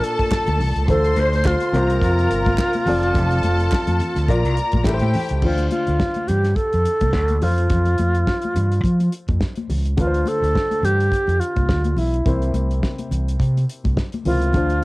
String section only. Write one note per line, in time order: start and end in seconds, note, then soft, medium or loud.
0.00 0.86 A4 medium
0.00 0.86 A5 medium
0.88 1.72 C5 medium
0.88 1.72 C6 loud
1.74 2.85 A#4 medium
1.74 2.85 A#5 medium
2.87 4.26 A4 medium
2.87 4.26 A5 loud
4.29 4.85 A#4 medium
4.29 4.85 A#5 loud
4.84 5.41 G4 medium
4.84 5.41 G5 medium